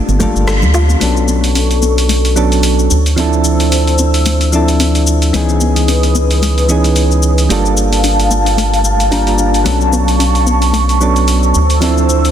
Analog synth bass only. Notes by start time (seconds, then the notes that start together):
0.08 G1
0.35 G1
0.63 D2
1.01 B1
2.91 D2
5.34 C#2
7.50 G1
9.66 B1
11.55 D2